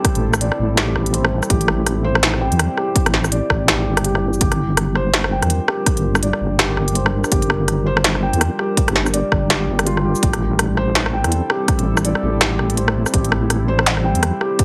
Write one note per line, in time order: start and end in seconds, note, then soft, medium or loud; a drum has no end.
0.00 4.37 G3 medium
0.00 4.37 C4 medium
0.00 4.37 E4 medium
0.00 0.39 G4 medium
0.00 1.47 A4 medium
0.00 1.14 C5 loud
0.00 2.41 G5 medium
0.05 kick loud
0.05 cross-stick medium
0.05 closed hi-hat medium
0.15 0.50 A1 medium
0.15 closed hi-hat soft
0.33 cross-stick medium
0.33 shaker soft
0.41 0.58 D5 medium
0.41 closed hi-hat medium
0.52 cross-stick medium
0.59 0.95 A1 medium
0.77 0.95 G4 medium
0.77 cross-stick medium
0.77 snare loud
0.77 closed hi-hat medium
0.95 1.41 A1 medium
0.95 cross-stick medium
1.06 closed hi-hat soft
1.14 1.48 C5 medium
1.14 closed hi-hat medium
1.25 cross-stick medium
1.43 cross-stick soft
1.43 shaker soft
1.50 2.50 A1 loud
1.50 1.67 G4 medium
1.50 4.38 G4 medium
1.50 kick loud
1.50 closed hi-hat medium
1.61 closed hi-hat soft
1.68 cross-stick medium
1.86 cross-stick medium
1.86 closed hi-hat medium
2.04 2.16 C5 loud
2.15 cross-stick medium
2.23 snare loud
2.23 closed hi-hat medium
2.34 cross-stick medium
2.41 2.76 G5 medium
2.52 2.68 E2 medium
2.52 closed hi-hat soft
2.59 cross-stick medium
2.59 closed hi-hat medium
2.77 3.30 G4 medium
2.77 cross-stick medium
2.96 kick loud
2.96 closed hi-hat medium
3.06 3.41 A1 medium
3.06 cross-stick medium
3.06 closed hi-hat soft
3.14 snare medium
3.24 cross-stick medium
3.24 shaker soft
3.32 3.49 D5 medium
3.32 closed hi-hat medium
3.50 3.88 A1 medium
3.50 kick medium
3.50 cross-stick medium
3.68 3.85 G4 medium
3.68 cross-stick medium
3.68 snare loud
3.68 closed hi-hat medium
3.86 4.40 G1 medium
3.86 4.03 G4 medium
3.97 cross-stick medium
3.97 closed hi-hat soft
4.04 4.21 G4 medium
4.04 closed hi-hat medium
4.15 cross-stick medium
4.33 shaker soft
4.41 5.41 G1 loud
4.41 14.65 G3 medium
4.41 10.19 D4 medium
4.41 10.19 F4 medium
4.41 4.58 G4 medium
4.41 10.19 A#4 medium
4.41 kick loud
4.41 closed hi-hat medium
4.52 cross-stick medium
4.52 closed hi-hat soft
4.77 cross-stick medium
4.77 closed hi-hat medium
4.95 5.07 C5 loud
4.95 cross-stick medium
5.14 snare loud
5.14 closed hi-hat medium
5.24 cross-stick medium
5.32 5.67 G5 medium
5.42 5.59 E2 loud
5.42 cross-stick medium
5.42 closed hi-hat soft
5.50 closed hi-hat medium
5.68 6.21 G4 medium
5.68 cross-stick medium
5.86 kick loud
5.86 cross-stick medium
5.86 closed hi-hat medium
5.97 6.32 G1 medium
5.97 closed hi-hat soft
6.15 cross-stick medium
6.15 shaker soft
6.23 6.40 D5 medium
6.23 closed hi-hat medium
6.33 cross-stick medium
6.41 6.77 G1 medium
6.59 6.77 G4 medium
6.59 cross-stick medium
6.59 snare loud
6.59 closed hi-hat medium
6.77 7.23 G1 loud
6.77 cross-stick medium
6.88 closed hi-hat soft
6.95 7.30 C5 medium
6.95 closed hi-hat medium
7.06 cross-stick medium
7.24 cross-stick medium
7.24 shaker soft
7.32 8.32 G1 loud
7.32 7.49 G4 medium
7.32 kick loud
7.32 closed hi-hat medium
7.42 closed hi-hat soft
7.50 cross-stick medium
7.68 cross-stick medium
7.68 closed hi-hat medium
7.86 7.98 C5 loud
7.97 cross-stick medium
8.04 snare loud
8.04 closed hi-hat medium
8.15 cross-stick medium
8.23 8.58 G5 medium
8.33 8.50 E2 loud
8.33 closed hi-hat soft
8.41 cross-stick medium
8.41 closed hi-hat medium
8.59 9.12 G4 medium
8.59 cross-stick soft
8.77 kick loud
8.77 closed hi-hat medium
8.88 9.23 G1 medium
8.88 cross-stick medium
8.88 closed hi-hat soft
8.96 snare medium
9.06 cross-stick soft
9.06 shaker soft
9.13 9.31 D5 medium
9.13 closed hi-hat medium
9.32 9.68 G1 medium
9.32 kick medium
9.32 cross-stick medium
9.50 9.67 G4 medium
9.50 cross-stick medium
9.50 snare loud
9.50 closed hi-hat medium
9.68 10.14 G1 medium
9.79 cross-stick medium
9.79 closed hi-hat soft
9.86 10.04 F4 loud
9.86 closed hi-hat medium
9.97 cross-stick medium
10.04 10.21 G4 medium
10.15 shaker soft
10.23 11.23 A1 loud
10.23 14.65 C4 medium
10.23 14.65 E4 medium
10.23 10.40 G4 medium
10.23 13.11 A4 medium
10.23 kick loud
10.23 closed hi-hat medium
10.33 cross-stick medium
10.33 closed hi-hat soft
10.59 cross-stick medium
10.59 closed hi-hat medium
10.77 10.89 C5 loud
10.77 cross-stick soft
10.95 snare loud
10.95 closed hi-hat medium
11.06 cross-stick medium
11.13 11.48 G5 medium
11.24 11.41 E2 loud
11.24 cross-stick medium
11.24 closed hi-hat soft
11.32 closed hi-hat medium
11.50 12.03 G4 medium
11.50 cross-stick medium
11.68 kick loud
11.68 cross-stick medium
11.68 closed hi-hat medium
11.79 12.14 A1 medium
11.79 closed hi-hat soft
11.97 cross-stick medium
11.97 shaker soft
12.05 12.22 D5 medium
12.05 closed hi-hat medium
12.15 cross-stick medium
12.23 12.58 A1 loud
12.23 12.39 G4 medium
12.41 12.58 G4 medium
12.41 cross-stick medium
12.41 snare loud
12.41 closed hi-hat medium
12.59 13.05 A1 loud
12.59 cross-stick medium
12.70 closed hi-hat soft
12.77 13.12 C5 medium
12.77 closed hi-hat medium
12.88 cross-stick medium
13.06 cross-stick medium
13.06 shaker soft
13.14 14.14 A1 loud
13.14 13.31 G4 medium
13.14 14.65 G4 medium
13.14 kick loud
13.14 closed hi-hat medium
13.24 closed hi-hat soft
13.32 cross-stick medium
13.50 cross-stick medium
13.50 closed hi-hat medium
13.68 13.80 C5 loud
13.79 cross-stick medium
13.86 snare loud
13.86 closed hi-hat medium
13.97 cross-stick medium
14.04 14.39 G5 medium
14.15 14.32 E2 medium
14.15 closed hi-hat soft
14.23 cross-stick medium
14.23 closed hi-hat medium
14.41 14.65 G4 medium
14.41 cross-stick medium
14.59 kick loud
14.59 closed hi-hat medium